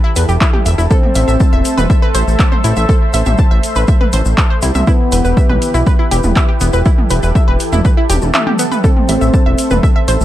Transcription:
Already playing: analog synth pad E3 E4 G4 A4
0.04 synth arpeggio sound E4 E5
0.16 analog synth bass E2, synth arpeggio sound B4 B5, open hi-hat, shaker
0.29 analog synth bass E1, synth arpeggio sound G4 G5, shaker
0.41 synth arpeggio sound E4 E5, kick, clap, shaker
0.53 synth arpeggio sound G4 G5, mid tom
0.66 analog synth bass E1, synth arpeggio sound E5 E6, open hi-hat, shaker
0.78 analog synth bass E1, synth arpeggio sound E4 E5, shaker
0.90 analog synth pad A3 C5 E5, analog synth lead C4, synth arpeggio sound A4 A5, kick, shaker
1.03 mid tom
1.15 analog synth bass A1, synth arpeggio sound E5 E6, open hi-hat, shaker
1.28 analog synth bass A1, synth arpeggio sound E5 E6, shaker
1.40 synth arpeggio sound A5 A6, kick, shaker
1.53 analog synth bass E1, synth arpeggio sound E5 E6
1.65 open hi-hat, shaker
1.77 analog synth bass E1, synth arpeggio sound B4 B5, mid tom, shaker
1.90 synth arpeggio sound E5 E6, kick, shaker
2.02 synth arpeggio sound B4 B5
2.15 analog synth bass A1, synth arpeggio sound C5 C6, open hi-hat, shaker
2.27 analog synth bass A1, shaker
2.39 synth arpeggio sound A5 A6, kick, clap, shaker
2.52 synth arpeggio sound C5 C6, mid tom
2.64 analog synth bass A1, synth arpeggio sound E4 E5, open hi-hat, shaker
2.76 analog synth bass A1, synth arpeggio sound E5 E6, shaker
2.89 synth arpeggio sound A4 A5, kick, shaker
3.13 analog synth bass A1, synth arpeggio sound E5 E6, open hi-hat, shaker
3.26 analog synth bass A1, synth arpeggio sound E5 E6, mid tom, shaker
3.38 synth arpeggio sound A5 A6, kick, shaker
3.51 analog synth bass A1, synth arpeggio sound E5 E6
3.63 open hi-hat, shaker
3.75 analog synth bass A1, synth arpeggio sound B4 B5, shaker
3.88 synth arpeggio sound E5 E6, kick, shaker
4.01 synth arpeggio sound B4 B5, mid tom
4.13 analog synth bass A1, synth arpeggio sound C5 C6, open hi-hat, shaker
4.25 analog synth bass A1, shaker
4.38 synth arpeggio sound A5 A6, kick, clap, shaker
4.50 synth arpeggio sound C5 C6
4.62 analog synth bass C2, synth arpeggio sound E4 E5, open hi-hat, shaker
4.75 analog synth bass C2, synth arpeggio sound E5 E6, mid tom, shaker
4.87 analog synth pad E3 E4 G4 B4, analog synth lead B3, synth arpeggio sound E4 E5, kick, shaker
5.12 analog synth bass E1, synth arpeggio sound B4 B5, open hi-hat, shaker
5.25 analog synth bass E1, synth arpeggio sound B4 B5, shaker
5.37 synth arpeggio sound E5 E6, kick, shaker
5.49 analog synth bass B1, synth arpeggio sound B4 B5, mid tom
5.62 open hi-hat, shaker
5.74 analog synth bass B1, synth arpeggio sound E4 E5, shaker
5.86 synth arpeggio sound B4 B5, kick, shaker
5.99 synth arpeggio sound E4 E5
6.11 analog synth bass E1, synth arpeggio sound G4 G5, open hi-hat, shaker
6.23 analog synth bass E1, mid tom, shaker
6.36 synth arpeggio sound E5 E6, kick, clap, shaker
6.49 synth arpeggio sound G4 G5
6.60 analog synth bass E1, synth arpeggio sound B3 B4, open hi-hat, shaker
6.73 analog synth bass E1, synth arpeggio sound B4 B5, shaker
6.85 synth arpeggio sound E4 E5, analog synth pad A4, kick, shaker
6.98 mid tom
7.10 analog synth bass E1, synth arpeggio sound B4 B5, open hi-hat, shaker
7.23 analog synth bass E1, synth arpeggio sound B4 B5, shaker
7.35 synth arpeggio sound E5 E6, kick, shaker
7.48 analog synth bass E1, synth arpeggio sound B4 B5
7.60 open hi-hat, shaker
7.72 analog synth bass E1, synth arpeggio sound E4 E5, mid tom, shaker
7.85 synth arpeggio sound B4 B5, kick, shaker
7.97 synth arpeggio sound E4 E5
8.10 analog synth bass E1, synth arpeggio sound G4 G5, open hi-hat, high tom, shaker
8.22 analog synth bass E1, high tom, shaker
8.34 synth arpeggio sound E5 E6, clap, mid tom, shaker
8.47 synth arpeggio sound G4 G5, mid tom
8.59 synth arpeggio sound B3 B4, open hi-hat, shaker
8.72 synth arpeggio sound B4 B5, mid tom, shaker
8.84 analog synth pad A3 C5 E5, analog synth lead C4, synth arpeggio sound A4 A5, kick, shaker
8.97 mid tom
9.09 analog synth bass A1, synth arpeggio sound E5 E6, open hi-hat, shaker
9.21 analog synth bass A1, synth arpeggio sound E5 E6, shaker
9.34 synth arpeggio sound A5 A6, kick, shaker
9.46 analog synth bass E1, synth arpeggio sound E5 E6
9.58 open hi-hat, shaker
9.70 analog synth bass E1, synth arpeggio sound B4 B5, mid tom, shaker
9.83 synth arpeggio sound E5 E6, kick, shaker
9.96 synth arpeggio sound E5 E6
10.08 analog synth bass A1, synth arpeggio sound C5 C6, open hi-hat, shaker
10.20 analog synth bass A1, shaker

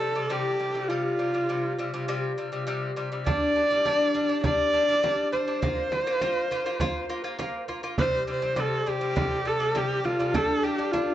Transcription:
Already playing: horsehead fiddle A4
0.00 lute C3 G3
0.15 lute C3 G3
0.30 lute C3 G3, horsehead fiddle G4
0.59 lute C3 G3
0.74 lute C3 G3
0.88 lute C3 G3, horsehead fiddle F4
1.19 lute C3 G3
1.34 lute C3 G3
1.49 lute C3 G3
1.79 lute C3 G3
1.94 lute C3 G3
2.08 lute C3 G3
2.38 lute C3 G3
2.52 lute C3 G3
2.67 lute C3 G3
2.96 lute C3 G3
3.12 lute C3 G3
3.25 lute G3 D4, horsehead fiddle D5, frame drum
3.55 lute G3 D4
3.70 lute G3 D4
3.85 lute G3 D4, frame drum
4.14 lute G3 D4, frame drum
4.29 lute G3 D4
4.43 lute G3 D4, horsehead fiddle D5, frame drum
4.73 lute G3 D4, frame drum
4.88 lute G3 D4
5.03 lute G3 D4, frame drum
5.32 lute G3 D4, horsehead fiddle C5, frame drum
5.47 lute G3 D4
5.62 lute A#3 F4, frame drum
5.92 lute A#3 F4, frame drum
6.07 lute A#3 F4
6.21 lute A#3 F4, frame drum
6.51 lute A#3 F4, frame drum
6.66 lute A#3 F4
6.80 lute A#3 F4, frame drum
7.09 lute A#3 F4, frame drum
7.24 lute A#3 F4
7.39 lute A#3 F4, frame drum
7.68 lute A#3 F4, frame drum
7.83 lute A#3 F4
7.98 lute C3 G3, horsehead fiddle C5, frame drum
8.27 lute C3 G3, horsehead fiddle C5
8.42 lute C3 G3, frame drum
8.56 lute C3 G3, frame drum
8.60 horsehead fiddle A4
8.86 lute C3 G3, horsehead fiddle G4, frame drum
9.01 lute C3 G3
9.16 lute C3 G3, frame drum
9.45 lute C3 G3, horsehead fiddle A4
9.60 lute C3 G3
9.75 lute C3 G3, horsehead fiddle G4, frame drum
10.04 lute C3 G3, horsehead fiddle F4, frame drum
10.19 lute C3 G3, frame drum
10.34 lute G3 D4, horsehead fiddle A4, frame drum
10.63 lute G3 D4, horsehead fiddle G4
10.78 lute G3 D4, frame drum
10.91 lute G3 D4, horsehead fiddle F4, frame drum

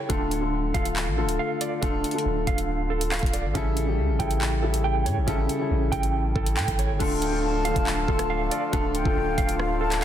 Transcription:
Already playing: grand piano C#3 G3 E4 A4
0.09 808-style bass D1, grand piano D3 A3 F4 A4, clean electric guitar D4, kick, closed hi-hat
0.31 closed hi-hat
0.41 grand piano D3 A3 F4 A4
0.74 808-style bass D1, grand piano D3 A3 F4 A4, clean electric guitar F5, kick, closed hi-hat
0.85 closed hi-hat
0.96 clap
1.07 808-style bass A1
1.17 grand piano D3 A3 F4 A4, clean electric guitar A4
1.23 808-style bass D1
1.29 closed hi-hat
1.39 clean electric guitar F5
1.61 clean electric guitar D5, closed hi-hat
1.81 808-style bass D1, grand piano D3 A3 F4 A4, clean electric guitar D4, kick, closed hi-hat
2.04 closed hi-hat
2.11 grand piano D3 A3 F4, closed hi-hat
2.15 grand piano A4, closed hi-hat
2.26 808-style bass D1
2.47 808-style bass D1, clean electric guitar F5, kick, closed hi-hat
2.58 closed hi-hat
2.90 clean electric guitar A4
3.01 closed hi-hat
3.12 clean electric guitar F5, clap, closed hi-hat
3.19 808-style bass D1, kick, closed hi-hat
3.26 closed hi-hat
3.33 clean electric guitar D5, closed hi-hat
3.44 808-style bass A1
3.54 808-style bass A1, grand piano C#3 G3 E4 A4, clean electric guitar C#4, kick, closed hi-hat
3.77 closed hi-hat
3.86 grand piano C#3 G3 E4 G4
3.98 808-style bass C#2
4.09 808-style bass A1
4.19 808-style bass A1, grand piano C#3 G3 E4 A4, clean electric guitar G5, kick, closed hi-hat
4.31 closed hi-hat
4.41 clap
4.62 grand piano C#3 G3 E4 G4, clean electric guitar A4
4.74 closed hi-hat
4.84 clean electric guitar G5
5.06 808-style bass A2, clean electric guitar C#5, closed hi-hat
5.17 808-style bass A1
5.27 808-style bass A1, grand piano C#3 G3 E4 A4, clean electric guitar C#4, kick, closed hi-hat
5.49 closed hi-hat
5.59 grand piano C#3 G3 E4 A4
5.71 808-style bass A1
5.92 808-style bass A1, clean electric guitar G5, kick, closed hi-hat
6.03 closed hi-hat
6.35 808-style bass A1, clean electric guitar A4, kick
6.46 closed hi-hat
6.57 808-style bass A2, clean electric guitar G5, clap, closed hi-hat
6.68 808-style bass A1, kick, closed hi-hat
6.79 clean electric guitar C#5, closed hi-hat
6.90 808-style bass G1
6.99 808-style bass D1, grand piano D3 A3 F4 A4, accordion D3 F3 A3 F4, clean electric guitar D4, kick, closed hi-hat, crash
7.22 flute G5, closed hi-hat
7.32 grand piano D3 A3 F4 A4
7.44 flute A5
7.64 grand piano D3 A3 F4 A4, clean electric guitar F5, closed hi-hat
7.76 808-style bass D1, kick, closed hi-hat
7.87 clap
8.08 808-style bass D1, grand piano D3 A3 F4 A4, clean electric guitar A4, kick
8.19 cross-stick, closed hi-hat
8.30 clean electric guitar F5
8.51 clean electric guitar D5, closed hi-hat
8.72 808-style bass D1, grand piano D3 A3 F4 A4, clean electric guitar D4, kick, closed hi-hat
8.95 flute G5, closed hi-hat
9.04 808-style bass D1, grand piano D3 A3 F4 A4, kick
9.16 808-style bass D1
9.38 808-style bass D1, clean electric guitar F5, kick, closed hi-hat
9.49 closed hi-hat
9.59 flute F5, cross-stick
9.81 clean electric guitar A4, flute A5
9.92 clap, closed hi-hat

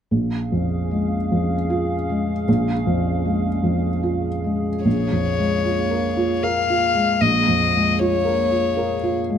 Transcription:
0.11 felt piano A#1, ambient pad C#4 G#4 F5
0.52 felt piano F2
0.91 felt piano G#3
1.32 felt piano F2
1.70 felt piano F4
2.09 felt piano G#3
2.48 felt piano A#1
2.87 felt piano F2
3.25 felt piano G#3
3.63 felt piano F2
4.03 felt piano F4
4.44 felt piano G#3
4.85 felt piano A#1, ambient pad A#3 G#4 F5, violin C#5
5.12 felt piano F2
5.38 felt piano G#3
5.65 felt piano F4
5.91 felt piano A#4
6.17 felt piano F4
6.43 felt piano A#4, violin F5
6.70 felt piano F4
6.95 felt piano G#3
7.21 felt piano A#1, violin D#5
7.48 felt piano F2
7.74 felt piano G#3
8.00 felt piano F4, violin C#5
8.25 felt piano A#4
8.51 felt piano F4
8.77 felt piano A#4
9.03 felt piano F4
9.30 felt piano G#3

